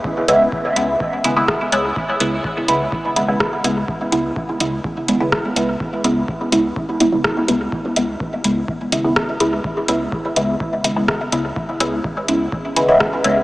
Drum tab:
HH |-x-x-x-x|-x-x-x-x|-x-x-x-x|-x-x-x-x|
SD |------r-|------r-|------r-|------r-|
BD |o-o-o-o-|o-o-o-o-|o-o-o-o-|o-o-o-o-|

HH |-x-x-x-x|-x-x-x-x|-x-x-x-x|
SD |------r-|------r-|------r-|
BD |o-o-o-o-|o-o-o-o-|o-o-o-o-|